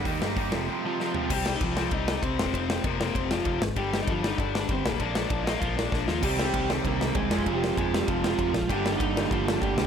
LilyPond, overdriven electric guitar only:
\new Staff \with { instrumentName = "Overdriven electric guitar" } { \time 4/4 \key c \minor \tempo 4 = 195 r2 r8 <f f'>4. | <g g'>8. <ees' ees''>16 <f f'>4 <ees' ees''>4 <c' c''>4 | <c' c''>8 <c' c''>8 <bes bes'>4 <c' c''>8 <f f'>4 r8 | <g g'>8. <ees' ees''>16 <f f'>8 <ees' ees''>8 <d' d''>4 <c' c''>8 <bes bes'>8 |
<d' d''>4 <d' d''>8 <ees' ees''>8 <f f'>8 <d' d''>4 <f f'>8 | <g g'>8 <g g'>4 r8 <bes bes'>4 <aes aes'>4 | <g g'>4 <aes aes'>8 <g g'>8 <f f'>8 <f f'>4. | <g g'>8. <ees' ees''>4~ <ees' ees''>16 <f f'>8 <f f'>8 <g g'>4 | }